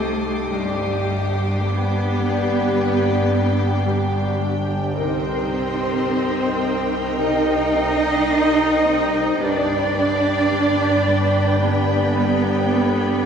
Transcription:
0.00 0.52 C2 soft
0.00 0.53 C2 medium
0.00 0.56 C3 medium
0.00 0.52 A3 medium
0.00 0.56 C4 soft
0.00 0.48 D#4 soft
0.00 0.48 D#4 medium
0.00 0.48 G4 soft
0.00 0.48 G4 medium
0.00 0.48 G4 soft
0.00 0.52 A4 medium
0.00 0.52 D#5 soft
0.00 0.48 G5 medium
0.00 0.48 G5 soft
0.00 4.36 D6 soft
0.00 2.15 D#6 soft
0.00 4.37 C7 soft
0.51 4.96 G1 medium
0.51 4.92 G1 medium
0.51 1.06 G2 medium
0.51 1.63 G3 medium
0.51 4.96 D4 soft
0.51 4.92 D4 medium
0.51 4.79 D4 medium
0.51 4.92 G4 medium
0.51 4.92 G4 soft
0.51 4.79 G4 medium
0.51 1.61 G4 medium
0.51 4.92 G5 medium
0.51 4.92 G5 soft
1.07 1.61 G2 soft
1.62 2.72 G2 soft
1.62 4.41 B3 medium
1.62 4.41 B4 medium
2.18 3.28 G3 soft
2.74 5.00 G2 medium
3.29 3.84 G3 soft
3.85 4.39 G3 soft
4.40 8.30 G3 soft
4.95 9.36 C2 medium
4.95 9.41 C2 medium
4.95 5.50 C3 medium
4.95 7.15 C4 medium
4.95 9.40 D#4 medium
4.95 5.40 D#4 medium
4.95 9.36 G4 soft
4.95 9.40 A#4 medium
4.95 5.40 A#4 medium
4.95 7.14 C5 medium
4.95 9.40 D#5 soft
4.95 9.37 G5 medium
4.95 9.40 A#5 soft
5.51 6.05 C3 soft
6.07 7.17 C3 soft
6.63 7.72 C4 soft
7.17 9.45 C3 medium
7.17 7.61 D#4 medium
7.17 9.41 D#4 medium
7.17 7.62 A#4 medium
7.17 9.41 D#5 medium
7.74 8.27 C4 medium
8.28 8.84 C4 soft
8.85 9.45 C4 soft
9.38 13.26 G1 medium
9.38 9.94 G2 medium
9.38 13.26 D4 medium
9.38 9.84 D4 medium
9.38 11.59 D4 medium
9.38 13.26 G4 soft
9.38 13.26 B4 medium
9.38 9.84 B4 medium
9.38 13.26 D5 medium
9.38 11.63 D5 medium
9.38 13.26 G5 medium
9.38 13.26 B5 medium
9.95 10.49 G2 medium
10.50 11.61 G2 medium
11.06 12.18 G3 soft
11.62 13.26 G2 medium
11.62 13.26 B3 medium
11.62 12.06 D4 medium
11.62 12.06 B4 medium
11.62 13.26 B4 medium
12.19 12.72 G3 medium
12.74 13.26 G3 soft

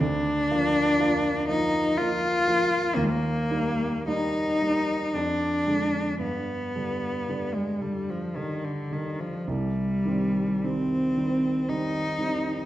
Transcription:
0.00 0.48 D2 medium
0.00 1.48 D4 medium
0.51 0.96 F3 medium
0.51 0.96 A#3 soft
0.51 0.96 F4 medium
0.99 1.45 F3 soft
0.99 1.45 A#3 soft
0.99 1.45 F4 medium
1.48 1.94 F3 medium
1.48 1.94 A#3 soft
1.48 1.99 D#4 medium
1.48 1.95 F4 medium
1.97 2.43 F3 medium
1.97 2.44 A#3 medium
1.97 2.98 F4 loud
1.97 2.44 F4 medium
2.47 2.92 F3 medium
2.47 2.92 A#3 medium
2.47 2.92 F4 medium
2.96 3.49 D#2 medium
2.96 3.05 A#3 medium
3.04 3.11 G#3 medium
3.09 4.06 A#3 medium
3.50 4.03 G3 soft
3.50 4.03 A#3 soft
3.50 4.03 D#4 soft
4.07 4.57 G3 soft
4.07 4.57 A#3 soft
4.07 4.57 D#4 soft
4.07 5.16 D#4 medium
4.61 5.10 G3 soft
4.61 5.10 A#3 soft
4.61 5.10 D#4 soft
5.14 5.65 F2 medium
5.14 6.21 D4 medium
5.66 6.16 D3 soft
5.66 6.16 G#3 soft
5.66 6.16 D4 soft
6.20 6.73 G2 medium
6.20 7.56 B3 medium
6.75 7.25 D3 soft
6.75 7.25 G3 soft
6.75 7.25 D4 soft
7.28 7.78 D3 soft
7.28 7.78 G3 soft
7.28 7.78 D4 soft
7.54 7.83 G#3 medium
7.82 8.32 D3 soft
7.82 8.32 G3 soft
7.82 8.12 G3 medium
7.82 8.32 D4 soft
8.10 8.38 F3 medium
8.36 8.88 D3 soft
8.36 8.66 D#3 medium
8.36 8.87 G3 soft
8.36 8.88 D4 soft
8.65 8.94 D3 medium
8.91 9.42 D3 soft
8.91 9.22 D#3 medium
8.91 9.43 G3 soft
8.91 9.43 D4 soft
9.20 9.51 F3 medium
9.47 10.03 C2 medium
9.47 10.66 G3 medium
10.05 10.60 D#3 soft
10.05 10.60 G3 soft
10.05 10.60 C4 soft
10.64 11.13 D#3 soft
10.64 11.14 G3 soft
10.64 11.71 C4 medium
10.64 11.14 C4 soft
11.17 11.64 D#3 soft
11.17 11.65 G3 soft
11.17 11.65 C4 soft
11.69 12.15 D#3 soft
11.69 12.15 G3 soft
11.69 12.15 C4 soft
11.69 12.65 D#4 medium
12.19 12.63 D#3 soft
12.19 12.63 G3 soft
12.19 12.63 C4 soft

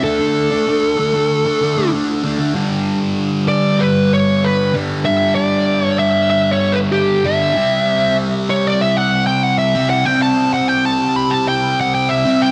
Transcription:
0.03 0.51 D3 medium
0.03 0.20 A3 medium
0.03 0.18 D4 medium
0.03 1.88 A4 medium
0.19 0.51 A3 medium
0.19 0.49 D4 medium
0.51 0.67 A3 medium
0.51 0.67 D4 medium
0.66 0.96 D3 medium
0.66 0.97 A3 medium
0.66 0.98 D4 medium
0.97 1.45 D3 medium
0.97 1.14 A3 medium
0.97 1.12 D4 medium
1.13 1.46 A3 medium
1.13 1.44 D4 medium
1.45 1.61 A3 medium
1.45 1.62 D4 medium
1.61 1.91 D3 medium
1.61 1.77 A3 medium
1.61 1.75 D4 medium
1.76 1.92 A3 medium
1.76 1.93 D4 medium
1.92 2.22 D3 medium
1.92 2.23 A3 medium
1.92 2.24 D4 medium
2.23 2.53 D3 medium
2.23 2.39 A3 medium
2.23 2.37 D4 medium
2.39 2.54 A3 medium
2.39 2.53 D4 medium
2.53 4.72 G2 medium
2.53 4.72 D3 medium
2.53 4.73 G3 medium
3.48 3.81 D5 loud
3.80 4.13 B4 medium
4.13 4.45 C#5 medium
4.44 4.73 B4 medium
4.74 5.04 G2 medium
4.74 5.04 D3 medium
4.74 5.07 G3 medium
5.05 7.23 G2 medium
5.05 7.24 D3 medium
5.05 7.24 G3 medium
5.05 5.35 E5 loud
5.35 5.81 D5 loud
5.81 5.99 C#5 loud
5.99 6.29 E5 loud
6.30 6.52 E5 loud
6.52 6.74 C#5 medium
6.72 6.78 B4 medium
6.92 7.25 G4 medium
7.24 7.55 G2 medium
7.24 7.55 D3 medium
7.24 7.56 G3 medium
7.24 8.15 E5 medium
7.55 9.73 C3 medium
7.55 9.75 G3 medium
7.55 9.73 C4 medium
8.50 8.67 C#5 medium
8.67 8.83 D5 medium
8.81 8.97 E5 medium
8.97 9.27 F#5 medium
9.27 9.43 G5 medium
9.43 9.58 F#5 medium
9.59 9.88 E5 medium
9.74 10.04 C3 medium
9.74 10.06 G3 medium
9.74 10.04 C4 medium
9.90 10.06 F#5 medium
10.05 12.24 C3 medium
10.05 12.25 G3 medium
10.05 12.23 C4 loud
10.05 10.22 G5 medium
10.22 10.53 A5 medium
10.54 10.68 F#5 medium
10.68 10.85 G5 medium
10.85 11.18 A5 medium
11.16 11.33 B5 medium
11.31 11.48 A5 loud
11.48 11.80 G5 medium
11.81 11.94 F#5 medium
11.95 12.09 G5 medium
12.09 12.42 E5 medium
12.25 12.52 C3 medium
12.25 12.52 G3 medium
12.25 12.52 C4 medium
12.42 12.52 G5 medium

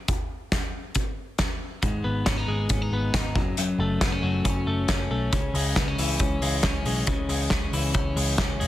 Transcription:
0.08 kick loud
0.08 closed hi-hat medium
0.52 kick medium
0.52 snare medium
0.52 closed hi-hat medium
0.95 kick medium
0.95 closed hi-hat medium
1.38 kick loud
1.38 snare medium
1.38 closed hi-hat medium
1.82 2.01 G#1 medium
1.82 3.35 G#2 medium
1.82 kick medium
1.82 closed hi-hat medium
2.04 2.23 G#1 medium
2.04 2.92 B3 medium
2.26 2.38 C#4 medium
2.26 kick loud
2.26 snare loud
2.26 closed hi-hat medium
2.38 2.70 D#4 medium
2.48 2.66 G#1 medium
2.48 3.40 G#3 medium
2.69 2.88 G#1 medium
2.69 2.82 C#4 medium
2.69 kick medium
2.69 closed hi-hat medium
2.82 3.13 D#4 medium
2.91 3.09 G#1 medium
2.91 3.41 B3 medium
3.14 3.41 D#4 medium
3.14 kick loud
3.14 snare medium
3.14 closed hi-hat medium
3.35 3.71 F#1 medium
3.35 3.57 F#2 medium
3.35 kick medium
3.57 5.33 F#2 medium
3.57 closed hi-hat medium
3.78 3.97 F#1 loud
3.78 4.66 A3 medium
4.01 4.12 B3 medium
4.01 kick loud
4.01 snare loud
4.01 closed hi-hat medium
4.12 4.43 C#4 medium
4.22 4.40 F#1 medium
4.22 5.37 F#3 soft
4.45 4.63 F#1 medium
4.45 4.89 C#4 medium
4.45 kick medium
4.45 closed hi-hat medium
4.66 4.84 F#1 medium
4.66 5.10 A3 medium
4.88 5.77 C#4 medium
4.88 kick medium
4.88 snare medium
4.88 closed hi-hat medium
5.11 5.29 B1 medium
5.11 5.37 A3 medium
5.33 5.51 C#2 loud
5.33 7.07 C#3 medium
5.33 kick loud
5.33 closed hi-hat medium
5.54 5.72 C#2 medium
5.54 6.42 G#3 medium
5.54 open hi-hat medium
5.76 5.94 C#2 medium
5.76 5.88 B3 medium
5.76 kick loud
5.76 snare loud
5.76 closed hi-hat medium
5.88 6.19 C#4 medium
5.98 6.16 C#2 medium
5.98 7.72 E3 soft
5.98 open hi-hat medium
6.19 6.38 C#2 medium
6.19 6.64 C#4 medium
6.19 kick medium
6.19 closed hi-hat medium
6.42 6.60 C#2 medium
6.42 6.85 G#3 medium
6.42 open hi-hat medium
6.63 6.82 C#2 medium
6.63 7.51 C#4 medium
6.63 kick medium
6.63 snare loud
6.63 closed hi-hat medium
6.85 7.03 B1 medium
6.85 7.29 G#3 medium
6.85 open hi-hat medium
7.07 7.25 C#2 medium
7.07 8.67 C#3 medium
7.07 kick medium
7.07 closed hi-hat medium
7.28 7.47 C#2 medium
7.28 8.16 G#3 medium
7.28 open hi-hat medium
7.50 7.69 C#2 medium
7.50 7.94 C#4 medium
7.50 kick loud
7.50 snare loud
7.73 7.91 C#2 medium
7.73 8.67 E3 medium
7.73 open hi-hat medium
7.94 8.13 C#2 loud
7.94 8.38 C#4 medium
7.94 kick medium
7.94 closed hi-hat medium
8.16 8.34 C#2 medium
8.16 8.60 G#3 medium
8.16 open hi-hat medium
8.38 8.56 C#2 medium
8.38 8.67 C#4 medium
8.38 kick loud
8.38 snare loud
8.38 closed hi-hat medium
8.60 8.67 E1 medium
8.60 8.67 G#3 medium
8.60 open hi-hat medium

